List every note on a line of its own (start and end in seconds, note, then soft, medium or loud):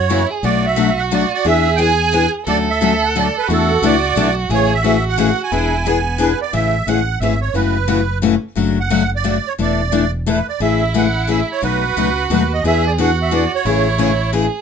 0.00 0.24 F#2 medium
0.00 0.28 C#5 medium
0.10 0.21 C#3 medium
0.10 0.21 E3 medium
0.10 0.21 A#3 loud
0.10 0.22 C#4 medium
0.10 0.32 E4 medium
0.10 0.22 F#4 medium
0.30 0.46 G#4 loud
0.43 1.25 B1 medium
0.43 0.65 B2 medium
0.43 0.65 F#3 medium
0.43 0.65 A3 medium
0.43 0.65 D4 medium
0.43 1.48 F#4 medium
0.43 0.65 F#4 medium
0.43 0.66 D5 medium
0.66 1.00 E5 medium
0.76 0.88 B2 loud
0.76 0.89 F#3 medium
0.76 0.89 A3 loud
0.76 0.89 D4 loud
0.76 0.89 F#4 medium
0.99 1.05 F#5 medium
1.11 1.23 B2 medium
1.11 1.23 F#3 medium
1.11 1.23 A3 loud
1.11 1.23 D4 medium
1.11 1.23 F#4 loud
1.11 1.32 D5 medium
1.34 1.46 D5 loud
1.45 2.26 E2 medium
1.45 1.66 E3 medium
1.45 1.66 B3 medium
1.45 1.67 D4 medium
1.45 1.67 G#4 medium
1.45 2.35 G#4 loud
1.45 1.76 E5 loud
1.76 1.90 E3 medium
1.76 1.90 B3 medium
1.76 1.90 D4 medium
1.76 1.90 G#4 medium
1.76 1.80 G5 medium
1.80 2.31 G#5 loud
2.13 2.24 E3 medium
2.13 2.25 B3 medium
2.13 2.25 D4 medium
2.13 2.25 G#4 loud
2.46 3.28 D2 medium
2.46 2.68 D3 medium
2.46 2.68 F#3 medium
2.46 2.68 A3 medium
2.46 2.68 C#4 medium
2.46 2.68 F#4 medium
2.46 3.49 A4 loud
2.46 2.58 D5 loud
2.70 3.04 E5 medium
2.81 2.92 D3 medium
2.81 2.92 F#3 medium
2.81 2.93 A3 medium
2.81 2.93 C#4 medium
2.81 2.93 F#4 loud
3.04 3.16 F#5 medium
3.15 3.26 D3 medium
3.15 3.26 F#3 medium
3.15 3.27 A3 medium
3.15 3.27 C#4 medium
3.15 3.27 F#4 medium
3.15 3.36 D5 medium
3.38 3.49 B4 loud
3.47 3.76 E2 medium
3.47 3.70 E3 medium
3.47 3.70 A3 medium
3.47 3.70 D4 medium
3.47 3.70 E4 medium
3.47 4.51 F#4 loud
3.47 3.71 A4 medium
3.52 3.85 A4 medium
3.82 4.11 C#2 medium
3.82 3.94 E3 loud
3.82 3.94 A3 medium
3.82 3.94 D4 loud
3.82 3.94 E4 loud
3.82 3.94 A4 loud
3.82 4.35 D5 loud
4.16 4.45 B1 medium
4.16 4.27 E3 loud
4.16 4.28 A3 loud
4.16 4.28 D4 loud
4.16 4.28 E4 loud
4.16 4.28 A4 loud
4.49 5.31 A1 medium
4.49 4.71 C#3 medium
4.49 4.71 E3 medium
4.49 4.71 A3 medium
4.49 4.71 C#4 medium
4.49 4.82 G#4 loud
4.49 4.71 G#4 medium
4.54 4.74 C#5 loud
4.75 5.04 E5 medium
4.83 4.95 C#3 medium
4.83 4.95 E3 medium
4.83 4.95 A3 medium
4.83 4.96 C#4 medium
4.83 5.53 F#4 medium
4.83 4.96 G#4 medium
5.09 5.42 F#5 loud
5.18 5.29 C#3 loud
5.18 5.29 E3 medium
5.18 5.29 A3 loud
5.18 5.29 C#4 medium
5.18 5.30 G#4 loud
5.43 6.39 G#5 medium
5.51 6.33 E1 medium
5.51 5.73 E3 medium
5.51 5.73 B3 medium
5.51 5.73 D4 medium
5.51 5.89 E4 medium
5.51 5.73 G#4 medium
5.86 5.97 E3 medium
5.86 5.97 B3 medium
5.86 6.41 B3 medium
5.86 5.97 D4 medium
5.86 5.97 G#4 loud
6.18 6.30 E3 loud
6.18 6.31 B3 medium
6.18 6.31 D4 medium
6.18 6.31 G#4 medium
6.18 6.40 B4 medium
6.42 6.53 D5 medium
6.53 6.80 A1 medium
6.53 6.74 C#3 medium
6.53 6.74 E3 medium
6.53 6.74 A3 medium
6.53 6.74 C#4 medium
6.53 6.75 G#4 medium
6.53 6.89 E5 loud
6.87 7.16 A1 medium
6.87 6.98 C#3 medium
6.87 6.99 E3 medium
6.87 6.99 A3 loud
6.87 6.99 C#4 medium
6.87 6.99 G#4 medium
6.87 7.19 F#5 medium
7.20 7.49 G#1 medium
7.20 7.33 C#3 medium
7.20 7.33 E3 medium
7.20 7.33 A3 medium
7.20 7.33 C#4 loud
7.20 7.33 G#4 medium
7.20 7.40 E5 medium
7.41 7.54 C#5 medium
7.54 8.36 F#1 medium
7.54 7.76 C#3 medium
7.54 7.76 E3 medium
7.54 7.76 A3 medium
7.54 7.76 C#4 medium
7.54 7.76 F#4 medium
7.54 8.19 B4 medium
7.88 8.00 C#3 medium
7.88 8.00 E3 medium
7.88 8.00 A3 medium
7.88 8.00 C#4 medium
7.88 8.00 F#4 medium
8.22 8.34 C#3 medium
8.22 8.34 E3 medium
8.22 8.34 A3 loud
8.22 8.34 C#4 medium
8.22 8.34 F#4 medium
8.56 9.38 F#1 medium
8.56 8.77 C#3 medium
8.56 8.78 F#3 medium
8.56 8.78 A3 medium
8.56 8.78 D4 medium
8.56 8.78 F#4 medium
8.80 9.11 F#5 loud
8.90 9.02 C#3 medium
8.90 9.02 F#3 medium
8.90 9.02 A3 medium
8.90 9.02 D4 medium
8.90 9.02 F#4 loud
9.16 9.49 D5 medium
9.24 9.36 C#3 medium
9.24 9.36 F#3 medium
9.24 9.36 A3 medium
9.24 9.36 D4 medium
9.24 9.36 F#4 medium
9.48 9.53 C#5 medium
9.58 10.40 E1 medium
9.58 9.80 E3 medium
9.58 9.80 A3 medium
9.58 9.80 D4 medium
9.58 9.80 E4 medium
9.58 9.80 A4 medium
9.58 10.11 D5 medium
9.92 10.03 E3 medium
9.92 10.04 A3 loud
9.92 10.04 D4 medium
9.92 10.04 E4 medium
9.92 10.04 A4 medium
10.26 10.38 E3 medium
10.26 10.38 A3 medium
10.26 10.38 D4 medium
10.26 10.38 E4 medium
10.26 10.38 A4 medium
10.26 10.47 B4 medium
10.49 10.60 D5 medium
10.60 11.42 A1 medium
10.60 10.81 C#3 medium
10.60 10.81 E3 medium
10.60 10.81 A3 medium
10.60 10.82 C#4 medium
10.60 11.64 E4 medium
10.60 10.82 G#4 medium
10.60 10.93 E5 medium
10.94 11.05 C#3 medium
10.94 11.06 E3 medium
10.94 11.06 A3 loud
10.94 11.06 C#4 medium
10.94 11.06 G#4 medium
10.94 11.31 F#5 loud
11.27 11.39 C#3 medium
11.27 11.39 E3 medium
11.27 11.39 A3 medium
11.27 11.40 C#4 loud
11.27 11.40 G#4 loud
11.27 11.49 E5 medium
11.52 11.63 C#5 medium
11.62 11.90 B1 medium
11.62 11.83 B2 medium
11.62 11.83 F#3 medium
11.62 11.83 A3 medium
11.62 11.84 D#4 medium
11.62 12.64 F#4 loud
11.62 11.84 F#4 medium
11.62 12.27 B4 loud
11.97 12.25 C#2 medium
11.97 12.08 B2 medium
11.97 12.08 F#3 medium
11.97 12.08 A3 medium
11.97 12.08 D#4 loud
11.97 12.08 F#4 medium
12.30 12.59 D#2 medium
12.30 12.41 B2 medium
12.30 12.42 F#3 medium
12.30 12.41 A3 medium
12.30 12.42 D#4 loud
12.30 12.42 F#4 loud
12.30 12.53 B4 medium
12.53 12.64 D#5 medium
12.64 13.45 E2 medium
12.64 12.85 E3 medium
12.64 12.85 B3 medium
12.64 12.86 D4 medium
12.64 13.01 G#4 loud
12.64 12.86 G#4 medium
12.64 12.85 E5 loud
12.86 12.92 D5 medium
12.98 13.09 E3 medium
12.98 13.09 B3 medium
12.98 13.10 D4 medium
12.98 13.67 F#4 loud
12.98 13.10 G#4 medium
12.98 13.19 F#5 loud
13.22 13.33 E5 medium
13.31 13.43 E3 loud
13.31 13.43 B3 medium
13.31 13.43 D4 medium
13.31 13.43 G#4 medium
13.31 13.52 D5 medium
13.55 14.31 C#5 medium
13.65 14.47 A1 medium
13.65 13.87 C#3 medium
13.65 13.87 E3 medium
13.65 13.87 A3 medium
13.65 13.87 C#4 medium
13.65 14.34 E4 medium
13.65 13.87 G#4 medium
13.98 14.10 C#3 medium
13.98 14.10 E3 medium
13.98 14.11 A3 medium
13.98 14.11 C#4 medium
13.98 14.11 G#4 medium
14.33 14.44 C#3 medium
14.33 14.45 E3 medium
14.33 14.45 A3 medium
14.33 14.45 C#4 loud
14.33 14.61 G#4 medium
14.33 14.45 G#4 medium